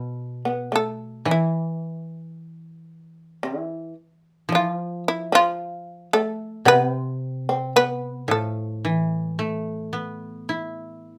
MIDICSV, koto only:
0, 0, Header, 1, 2, 480
1, 0, Start_track
1, 0, Tempo, 1081081
1, 82, Time_signature, 4, 2, 24, 8
1, 3921, Tempo, 1113173
1, 4934, End_track
2, 0, Start_track
2, 0, Title_t, "Koto"
2, 0, Program_c, 0, 107
2, 0, Note_on_c, 0, 47, 50
2, 557, Note_on_c, 0, 52, 50
2, 559, Note_off_c, 0, 47, 0
2, 1992, Note_on_c, 0, 53, 53
2, 1998, Note_off_c, 0, 52, 0
2, 2954, Note_on_c, 0, 48, 57
2, 3439, Note_off_c, 0, 53, 0
2, 3676, Note_on_c, 0, 45, 51
2, 3680, Note_off_c, 0, 48, 0
2, 3927, Note_on_c, 0, 52, 41
2, 4161, Note_on_c, 0, 57, 37
2, 4394, Note_on_c, 0, 59, 37
2, 4636, Note_on_c, 0, 64, 36
2, 4883, Note_off_c, 0, 52, 0
2, 4934, Note_off_c, 0, 45, 0
2, 4934, Note_off_c, 0, 57, 0
2, 4934, Note_off_c, 0, 59, 0
2, 4934, Note_off_c, 0, 64, 0
2, 4934, End_track
0, 0, End_of_file